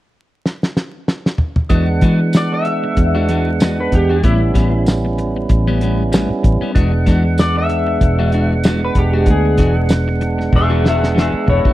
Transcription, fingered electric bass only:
0, 0, Header, 1, 3, 480
1, 0, Start_track
1, 0, Tempo, 630252
1, 1302, Time_signature, 4, 2, 24, 8
1, 8935, End_track
2, 0, Start_track
2, 0, Title_t, "Fingered electric bass"
2, 0, Program_c, 0, 33
2, 1295, Note_on_c, 0, 40, 93
2, 1524, Note_off_c, 0, 40, 0
2, 1535, Note_on_c, 0, 52, 99
2, 2229, Note_off_c, 0, 52, 0
2, 2262, Note_on_c, 0, 40, 83
2, 2952, Note_off_c, 0, 40, 0
2, 2985, Note_on_c, 0, 40, 81
2, 3209, Note_off_c, 0, 40, 0
2, 3225, Note_on_c, 0, 33, 104
2, 3450, Note_off_c, 0, 33, 0
2, 3467, Note_on_c, 0, 33, 84
2, 4155, Note_off_c, 0, 33, 0
2, 4186, Note_on_c, 0, 33, 95
2, 4769, Note_off_c, 0, 33, 0
2, 4908, Note_on_c, 0, 33, 86
2, 5029, Note_off_c, 0, 33, 0
2, 5146, Note_on_c, 0, 28, 100
2, 5370, Note_off_c, 0, 28, 0
2, 5381, Note_on_c, 0, 40, 99
2, 6072, Note_off_c, 0, 40, 0
2, 6101, Note_on_c, 0, 28, 85
2, 6791, Note_off_c, 0, 28, 0
2, 6817, Note_on_c, 0, 28, 83
2, 7045, Note_off_c, 0, 28, 0
2, 7055, Note_on_c, 0, 38, 102
2, 7284, Note_off_c, 0, 38, 0
2, 7295, Note_on_c, 0, 28, 89
2, 7988, Note_off_c, 0, 28, 0
2, 8018, Note_on_c, 0, 28, 91
2, 8603, Note_off_c, 0, 28, 0
2, 8742, Note_on_c, 0, 28, 84
2, 8868, Note_off_c, 0, 28, 0
2, 8935, End_track
3, 0, Start_track
3, 0, Title_t, "Muted fingered electric bass strokes"
3, 4800, Note_on_c, 9, 29, 35
3, 4877, Note_off_c, 9, 29, 0
3, 5034, Note_on_c, 9, 29, 35
3, 5110, Note_off_c, 9, 29, 0
3, 8633, Note_on_c, 9, 29, 36
3, 8709, Note_off_c, 9, 29, 0
3, 8935, End_track
0, 0, End_of_file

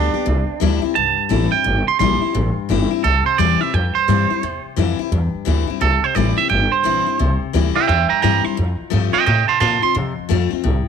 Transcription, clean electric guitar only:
0, 0, Header, 1, 2, 480
1, 0, Start_track
1, 0, Tempo, 346021
1, 368, Time_signature, 4, 2, 24, 8
1, 15094, End_track
2, 0, Start_track
2, 0, Title_t, "Clean electric guitar"
2, 0, Program_c, 0, 27
2, 0, Note_on_c, 0, 62, 96
2, 1112, Note_off_c, 0, 62, 0
2, 1323, Note_on_c, 0, 81, 97
2, 2092, Note_off_c, 0, 81, 0
2, 2105, Note_on_c, 0, 79, 84
2, 2579, Note_off_c, 0, 79, 0
2, 2608, Note_on_c, 0, 84, 94
2, 2747, Note_off_c, 0, 84, 0
2, 2764, Note_on_c, 0, 84, 97
2, 4169, Note_off_c, 0, 84, 0
2, 4215, Note_on_c, 0, 69, 98
2, 4515, Note_off_c, 0, 69, 0
2, 4524, Note_on_c, 0, 72, 91
2, 4692, Note_on_c, 0, 74, 79
2, 4693, Note_off_c, 0, 72, 0
2, 5005, Note_off_c, 0, 74, 0
2, 5005, Note_on_c, 0, 76, 76
2, 5185, Note_off_c, 0, 76, 0
2, 5185, Note_on_c, 0, 79, 87
2, 5479, Note_on_c, 0, 72, 93
2, 5480, Note_off_c, 0, 79, 0
2, 6415, Note_off_c, 0, 72, 0
2, 8067, Note_on_c, 0, 69, 93
2, 8377, Note_off_c, 0, 69, 0
2, 8377, Note_on_c, 0, 72, 93
2, 8532, Note_off_c, 0, 72, 0
2, 8532, Note_on_c, 0, 74, 79
2, 8833, Note_off_c, 0, 74, 0
2, 8846, Note_on_c, 0, 76, 87
2, 9007, Note_off_c, 0, 76, 0
2, 9013, Note_on_c, 0, 79, 89
2, 9313, Note_off_c, 0, 79, 0
2, 9320, Note_on_c, 0, 72, 85
2, 10253, Note_off_c, 0, 72, 0
2, 10758, Note_on_c, 0, 76, 75
2, 10767, Note_on_c, 0, 79, 80
2, 10907, Note_off_c, 0, 76, 0
2, 10914, Note_off_c, 0, 79, 0
2, 10923, Note_on_c, 0, 76, 88
2, 10930, Note_on_c, 0, 79, 105
2, 11207, Note_off_c, 0, 79, 0
2, 11214, Note_off_c, 0, 76, 0
2, 11224, Note_on_c, 0, 79, 71
2, 11233, Note_on_c, 0, 82, 79
2, 11388, Note_off_c, 0, 79, 0
2, 11398, Note_off_c, 0, 82, 0
2, 11405, Note_on_c, 0, 79, 84
2, 11415, Note_on_c, 0, 82, 97
2, 11694, Note_off_c, 0, 79, 0
2, 11717, Note_off_c, 0, 82, 0
2, 11717, Note_on_c, 0, 84, 89
2, 11887, Note_off_c, 0, 84, 0
2, 12670, Note_on_c, 0, 75, 82
2, 12679, Note_on_c, 0, 79, 96
2, 12832, Note_off_c, 0, 75, 0
2, 12842, Note_off_c, 0, 79, 0
2, 12849, Note_on_c, 0, 75, 83
2, 12858, Note_on_c, 0, 79, 87
2, 13134, Note_off_c, 0, 75, 0
2, 13151, Note_on_c, 0, 81, 71
2, 13152, Note_off_c, 0, 79, 0
2, 13163, Note_on_c, 0, 84, 74
2, 13306, Note_off_c, 0, 81, 0
2, 13308, Note_off_c, 0, 84, 0
2, 13322, Note_on_c, 0, 81, 90
2, 13328, Note_on_c, 0, 84, 91
2, 13611, Note_off_c, 0, 81, 0
2, 13624, Note_off_c, 0, 84, 0
2, 13638, Note_on_c, 0, 84, 94
2, 13805, Note_off_c, 0, 84, 0
2, 15094, End_track
0, 0, End_of_file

